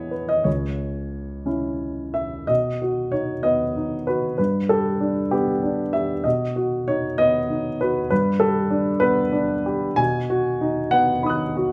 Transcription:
Already playing: E2 B3 E4 C#5 D#5 E5
0.11 B4
0.29 D#5
0.44 C#2 C#5
1.46 C#4 E4
2.14 E5
2.47 B2 D#5
2.82 F#4
3.12 D#4 C#5
3.43 B3 D#5
3.76 D#4
4.07 F#4 B4
4.38 G2 B4
4.69 G4 A4
5.01 D4
5.31 B3 G4
5.63 D4
5.93 G4 E5
6.24 B2 D#5
6.56 F#4
6.88 D#4 C#5
7.18 B3 D#5
7.50 D#4
7.81 F#4 B4
8.10 G2 B4
8.40 G4 A4
8.70 D4
9.00 B3 B4
9.33 D4
9.66 G4
9.96 B2 G#5
10.30 F#4
10.61 D#4
10.91 B3 F#5
11.23 D#4 B5 D#6
11.29 F#6
11.57 F#4

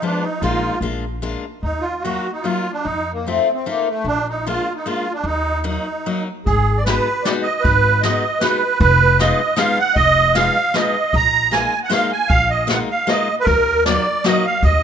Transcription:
0.02 F3 G#3 B3 D4 F4
0.22 D#4
0.41 A#1 G#3 A#3 D#4 F4
0.81 A#1 G#3 A#3 D4 F4
1.22 G#3 A#3 D4 F4
1.63 D#2 D#4
1.81 F4
2.02 F#3 A#3 F4 F#4
2.06 D#4
2.32 D#4
2.42 F#3 A#3 D#4 F4
2.72 D4
2.83 F2 D#4
3.12 A#3
3.26 A3 C4 D#4 F4
3.53 C4
3.66 A3 A#3 C4 D#4 F4
3.88 A3
4.04 A#1 D4
4.29 D#4
4.47 G#3 A#3 D4 F4
4.76 D#4
4.86 G#3 A#3 D4 F4
5.13 D4
5.24 D#2 D#4
5.64 F#3 A#3 D#4 F#4
6.06 F#3 A#3 D#4 F#4
6.46 G#1 G#4, kick, closed hi-hat
6.77 D5
6.85 G#3 B3 D#4 F#4 B4, snare, closed hi-hat
7.23 G#3 B3 D#4 F#4 D5, snare, closed hi-hat
7.43 D#5
7.61 B4, kick
7.65 G#1, closed hi-hat
8.02 G#3 B3 D#4 F#4 D#5, snare, closed hi-hat
8.40 G#3 B3 D#4 F#4 B4, snare, closed hi-hat
8.80 F1 B4, kick, closed hi-hat
9.19 G#3 B3 D#4 F4 D#5, snare, closed hi-hat
9.56 G#3 B3 D#4 F4 F5, snare, closed hi-hat
9.79 F#5
9.95 F1 D#5, kick, closed hi-hat
10.35 G#3 B3 D#4 F4 F5, snare, closed hi-hat
10.74 G#3 B3 D#4 F4 D#5, snare, closed hi-hat
11.13 A#1 A#5, kick, closed hi-hat
11.51 G#3 A#3 D#4 F4 G#5, snare, closed hi-hat
11.84 F#5
11.89 G#3 A#3 D#4 F4 F5, snare, closed hi-hat
12.12 G#5
12.28 A#1 F5, kick, closed hi-hat
12.50 D#5
12.67 G#3 A#3 D#4 F4 F#5, snare, closed hi-hat
12.91 F5
13.07 G#3 A#3 D#4 F4 D#5, snare, closed hi-hat
13.40 A#4 B4
13.46 D#2, kick, closed hi-hat
13.86 F#3 A#3 D#4 F#4 D5, snare, closed hi-hat
14.24 F#3 A#3 D#4 F#4 D#5, snare, closed hi-hat
14.45 F5
14.63 D#2 D#5, kick, closed hi-hat

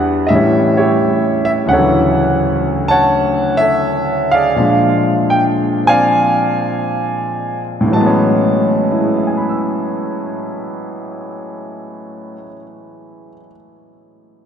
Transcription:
Already playing: E2 E3 G3 D4
0.27 A2 D#5 E5
0.32 E3 G3 C#4
0.77 E4 G4 C#5
1.45 E5
1.67 D2 C#3 F#5
1.73 F#3 A4 C#5
1.78 E3
2.88 C#5 F#5 A5
3.57 C#5 E5
3.61 A4
4.32 G#4 D5 F5
4.56 A#2 F3 G#3 D4
5.30 G5
5.85 F3 C4 D5 G#5
5.89 F5
7.81 A2
7.87 E3
7.92 F#3 A5
7.96 G#3
8.01 B3
8.06 C#4
8.92 E4
9.00 G#4
9.08 B4
9.17 E5
9.27 G#5
9.37 B5
9.49 E6

